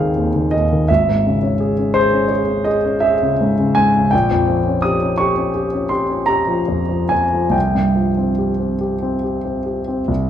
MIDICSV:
0, 0, Header, 1, 2, 480
1, 0, Start_track
1, 0, Tempo, 720288
1, 595, Time_signature, 9, 3, 24, 8
1, 3943, Tempo, 778210
1, 4423, Tempo, 848656
1, 6461, End_track
2, 0, Start_track
2, 0, Title_t, "Grand piano"
2, 0, Program_c, 0, 0
2, 0, Control_c, 0, 64, 127
2, 0, Note_on_c, 0, 32, 45
2, 0, Note_on_c, 0, 51, 39
2, 0, Note_on_c, 0, 60, 40
2, 0, Note_on_c, 0, 68, 39
2, 0, Note_on_c, 0, 77, 61
2, 0, Note_on_c, 0, 79, 59
2, 0, Note_on_c, 0, 80, 69
2, 0, Note_on_c, 0, 84, 63
2, 108, Note_on_c, 0, 39, 39
2, 181, Note_off_c, 0, 51, 0
2, 235, Note_on_c, 0, 51, 35
2, 305, Note_off_c, 0, 39, 0
2, 340, Note_on_c, 0, 75, 63
2, 346, Note_off_c, 0, 77, 0
2, 356, Note_on_c, 0, 39, 36
2, 429, Note_off_c, 0, 51, 0
2, 479, Note_on_c, 0, 51, 37
2, 549, Note_off_c, 0, 39, 0
2, 569, Note_off_c, 0, 32, 0
2, 589, Note_off_c, 0, 75, 0
2, 589, Note_on_c, 0, 76, 70
2, 597, Note_off_c, 0, 51, 0
2, 603, Note_on_c, 0, 32, 50
2, 604, Control_c, 0, 64, 0
2, 605, Note_off_c, 0, 68, 0
2, 608, Note_off_c, 0, 80, 0
2, 608, Note_off_c, 0, 84, 0
2, 610, Note_off_c, 0, 60, 0
2, 610, Note_off_c, 0, 79, 0
2, 715, Control_c, 0, 64, 127
2, 723, Note_on_c, 0, 44, 41
2, 841, Note_on_c, 0, 49, 39
2, 908, Note_off_c, 0, 44, 0
2, 952, Note_on_c, 0, 61, 41
2, 1026, Note_off_c, 0, 49, 0
2, 1069, Note_on_c, 0, 68, 39
2, 1141, Note_off_c, 0, 61, 0
2, 1190, Note_on_c, 0, 61, 40
2, 1259, Note_off_c, 0, 68, 0
2, 1292, Note_on_c, 0, 72, 82
2, 1303, Note_off_c, 0, 76, 0
2, 1304, Note_on_c, 0, 68, 47
2, 1378, Note_off_c, 0, 61, 0
2, 1421, Note_on_c, 0, 61, 45
2, 1492, Note_off_c, 0, 68, 0
2, 1520, Note_on_c, 0, 73, 56
2, 1533, Note_off_c, 0, 72, 0
2, 1538, Note_on_c, 0, 68, 43
2, 1609, Note_off_c, 0, 61, 0
2, 1656, Note_on_c, 0, 61, 42
2, 1726, Note_off_c, 0, 68, 0
2, 1762, Note_on_c, 0, 75, 64
2, 1765, Note_off_c, 0, 73, 0
2, 1777, Note_on_c, 0, 68, 45
2, 1846, Note_off_c, 0, 61, 0
2, 1899, Note_on_c, 0, 61, 44
2, 1969, Note_off_c, 0, 68, 0
2, 2002, Note_on_c, 0, 76, 72
2, 2011, Note_off_c, 0, 75, 0
2, 2019, Note_on_c, 0, 68, 46
2, 2094, Note_off_c, 0, 61, 0
2, 2148, Note_on_c, 0, 49, 45
2, 2217, Note_off_c, 0, 68, 0
2, 2272, Note_on_c, 0, 44, 46
2, 2343, Note_off_c, 0, 49, 0
2, 2393, Note_on_c, 0, 49, 44
2, 2465, Note_off_c, 0, 44, 0
2, 2497, Note_on_c, 0, 80, 74
2, 2503, Note_off_c, 0, 76, 0
2, 2512, Note_on_c, 0, 44, 44
2, 2585, Note_off_c, 0, 49, 0
2, 2640, Note_on_c, 0, 49, 43
2, 2704, Note_off_c, 0, 44, 0
2, 2728, Note_off_c, 0, 32, 0
2, 2738, Note_on_c, 0, 79, 72
2, 2744, Note_off_c, 0, 80, 0
2, 2753, Note_on_c, 0, 34, 52
2, 2755, Note_off_c, 0, 49, 0
2, 2759, Control_c, 0, 64, 0
2, 2847, Control_c, 0, 64, 127
2, 2871, Note_on_c, 0, 41, 46
2, 2988, Note_on_c, 0, 53, 42
2, 3060, Note_off_c, 0, 41, 0
2, 3110, Note_on_c, 0, 61, 44
2, 3177, Note_off_c, 0, 53, 0
2, 3213, Note_on_c, 0, 87, 73
2, 3218, Note_off_c, 0, 79, 0
2, 3228, Note_on_c, 0, 67, 46
2, 3296, Note_off_c, 0, 61, 0
2, 3345, Note_on_c, 0, 61, 38
2, 3415, Note_off_c, 0, 67, 0
2, 3449, Note_on_c, 0, 85, 67
2, 3455, Note_off_c, 0, 87, 0
2, 3465, Note_on_c, 0, 67, 46
2, 3532, Note_off_c, 0, 61, 0
2, 3581, Note_on_c, 0, 61, 44
2, 3653, Note_off_c, 0, 67, 0
2, 3699, Note_on_c, 0, 67, 42
2, 3773, Note_off_c, 0, 61, 0
2, 3824, Note_on_c, 0, 61, 42
2, 3893, Note_off_c, 0, 67, 0
2, 3926, Note_on_c, 0, 84, 67
2, 3937, Note_off_c, 0, 85, 0
2, 3940, Note_on_c, 0, 67, 43
2, 4013, Note_off_c, 0, 61, 0
2, 4054, Note_on_c, 0, 61, 40
2, 4126, Note_off_c, 0, 67, 0
2, 4154, Note_on_c, 0, 82, 74
2, 4167, Note_off_c, 0, 84, 0
2, 4169, Note_on_c, 0, 67, 42
2, 4245, Note_off_c, 0, 61, 0
2, 4285, Note_on_c, 0, 53, 39
2, 4368, Note_off_c, 0, 67, 0
2, 4415, Note_on_c, 0, 41, 38
2, 4488, Note_off_c, 0, 53, 0
2, 4533, Note_on_c, 0, 53, 34
2, 4610, Note_off_c, 0, 41, 0
2, 4646, Note_on_c, 0, 80, 64
2, 4653, Note_off_c, 0, 82, 0
2, 4661, Note_on_c, 0, 41, 33
2, 4732, Note_off_c, 0, 53, 0
2, 4781, Note_on_c, 0, 53, 36
2, 4856, Note_off_c, 0, 41, 0
2, 4878, Note_on_c, 0, 36, 43
2, 4884, Note_off_c, 0, 34, 0
2, 4886, Note_on_c, 0, 79, 59
2, 4898, Note_off_c, 0, 80, 0
2, 4904, Note_off_c, 0, 53, 0
2, 4915, Control_c, 0, 64, 0
2, 5015, Control_c, 0, 64, 127
2, 5020, Note_on_c, 0, 43, 36
2, 5137, Note_on_c, 0, 53, 32
2, 5212, Note_off_c, 0, 43, 0
2, 5259, Note_on_c, 0, 60, 37
2, 5329, Note_off_c, 0, 53, 0
2, 5378, Note_on_c, 0, 67, 35
2, 5450, Note_off_c, 0, 60, 0
2, 5498, Note_on_c, 0, 60, 31
2, 5571, Note_off_c, 0, 67, 0
2, 5618, Note_on_c, 0, 67, 37
2, 5691, Note_off_c, 0, 60, 0
2, 5741, Note_on_c, 0, 60, 40
2, 5813, Note_off_c, 0, 67, 0
2, 5862, Note_on_c, 0, 67, 35
2, 5936, Note_off_c, 0, 60, 0
2, 5980, Note_on_c, 0, 60, 34
2, 6057, Note_off_c, 0, 67, 0
2, 6099, Note_on_c, 0, 67, 35
2, 6175, Note_off_c, 0, 60, 0
2, 6223, Note_on_c, 0, 60, 34
2, 6293, Note_off_c, 0, 67, 0
2, 6307, Note_off_c, 0, 36, 0
2, 6338, Note_on_c, 0, 36, 43
2, 6342, Note_off_c, 0, 60, 0
2, 6354, Control_c, 0, 64, 0
2, 6461, Note_off_c, 0, 36, 0
2, 6461, Note_off_c, 0, 79, 0
2, 6461, End_track
0, 0, End_of_file